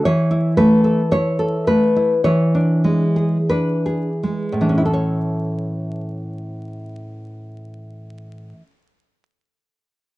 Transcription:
0.05 2.21 E3 medium
0.05 0.55 C#5 medium
0.31 0.73 E4 soft
0.57 1.00 A3 soft
0.57 1.09 B4 medium
0.84 1.28 A4 soft
1.11 1.56 E4 soft
1.11 1.65 C#5 medium
1.39 1.84 A4 soft
1.67 2.13 A3 soft
1.67 2.22 B4 medium
1.96 2.25 E4 soft
2.24 4.60 E3 soft
2.24 3.46 C#5 medium
2.55 3.04 D4 soft
2.84 3.36 G#3 soft
3.16 3.71 G#4 soft
3.49 4.08 D4 soft
3.49 4.77 B4 medium
3.86 4.46 G#4 soft
4.23 4.81 G#3 soft
4.52 8.52 A2 soft
4.61 8.61 E3 soft
4.61 4.93 D4 soft
4.69 8.69 C#4 soft
4.78 4.85 E4 soft
4.85 8.85 A4 soft
4.93 8.93 C#5 soft

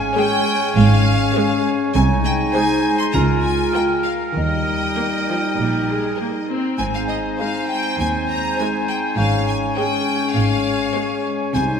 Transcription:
0.00 1.90 G#3 medium
0.00 1.91 C#4 medium
0.00 2.56 C#5 medium
0.00 0.16 G#5 medium
0.00 1.92 G#5 medium
0.16 0.61 G#3 medium
0.16 0.61 G#4 medium
0.16 0.61 C#5 medium
0.16 0.75 G5 medium
0.16 0.73 G5 medium
0.76 1.23 G#1 medium
0.76 1.23 G#2 medium
0.76 1.63 F5 medium
0.76 1.62 F5 medium
1.36 1.80 G#3 medium
1.36 1.80 G#4 medium
1.36 1.80 C#5 medium
1.94 2.42 C2 medium
1.94 2.42 C3 medium
1.94 4.18 G#3 medium
1.94 3.11 D#4 medium
1.94 3.16 D#4 medium
1.94 2.02 G#5 medium
1.94 4.02 G#5 medium
1.94 2.24 G#5 medium
2.25 2.33 G5 medium
2.25 2.54 G5 medium
2.53 2.99 G#3 medium
2.53 2.99 G#4 medium
2.53 2.98 C5 medium
2.53 3.16 C5 medium
2.53 2.97 G#5 medium
2.53 2.96 G#5 medium
2.98 3.05 C6 medium
2.98 3.14 C6 medium
3.13 3.62 C#2 medium
3.13 3.61 C#3 medium
3.13 4.18 F4 medium
3.13 4.06 F4 medium
3.13 6.48 A#4 medium
3.13 3.21 A#5 medium
3.13 3.42 A#5 medium
3.42 3.72 G#5 medium
3.42 3.73 G#5 medium
3.74 4.19 G#3 medium
3.74 4.19 F4 medium
3.74 4.19 A#4 medium
3.74 3.82 G5 medium
3.74 4.03 G5 medium
4.04 4.12 F5 medium
4.04 4.33 F5 medium
4.34 4.83 D#2 medium
4.34 4.83 D#3 medium
4.34 6.44 G3 medium
4.34 9.80 D#4 medium
4.34 6.43 D#4 medium
4.34 6.43 D#5 medium
4.34 6.45 D#5 medium
4.34 6.44 G5 medium
4.96 5.05 A#3 medium
4.96 5.41 A#4 soft
5.28 5.36 F3 medium
5.56 6.05 A#1 medium
5.56 6.04 A#2 medium
5.56 5.86 G3 soft
5.88 6.18 G#3 medium
6.18 6.27 A#3 medium
6.18 6.63 A#4 medium
6.50 6.78 C4 medium
6.78 7.26 G#1 medium
6.78 7.26 G#2 medium
6.78 11.52 G#3 medium
6.78 9.14 C4 medium
6.78 9.14 C5 medium
6.78 11.51 G#5 medium
6.78 6.92 G#5 medium
6.78 6.85 G#5 medium
6.95 7.08 F5 medium
6.95 7.01 F5 medium
7.08 7.36 D#5 medium
7.08 7.16 D#5 medium
7.39 7.84 G#3 medium
7.39 7.84 D#4 medium
7.39 7.83 C5 medium
7.39 7.68 F5 medium
7.39 7.67 F5 medium
7.68 7.96 G5 medium
7.68 7.98 G5 medium
7.98 8.45 D#2 medium
7.98 8.46 D#2 medium
7.98 8.25 G#5 medium
7.98 8.07 G#5 medium
8.28 8.57 A#5 medium
8.57 9.04 G#3 medium
8.57 9.04 D#4 medium
8.57 9.02 C5 medium
8.57 8.85 G#5 medium
8.57 8.67 G#5 medium
8.89 9.16 G5 medium
8.89 8.97 G5 medium
9.16 9.65 G#1 medium
9.16 9.64 G#2 medium
9.16 11.52 C#4 medium
9.16 11.56 C#5 medium
9.16 9.46 F5 medium
9.16 9.45 F5 medium
9.47 9.75 G#5 medium
9.47 9.56 G#5 medium
9.76 10.22 G#3 medium
9.76 11.28 C#4 medium
9.76 10.22 G#4 medium
9.76 10.21 C#5 medium
9.76 10.35 G5 medium
9.76 10.33 G5 medium
10.35 10.83 G#1 medium
10.35 10.83 G#2 medium
10.35 11.25 F5 medium
10.35 11.21 F5 medium
10.95 11.40 G#3 medium
10.95 11.40 G#4 medium
10.95 11.39 C#5 medium
11.53 11.80 C2 medium
11.53 11.80 C3 medium
11.53 11.80 G#3 medium
11.53 11.80 D#4 medium
11.53 11.80 C5 medium
11.53 11.80 G#5 medium
11.53 11.63 G#5 medium
11.53 11.80 G#5 medium

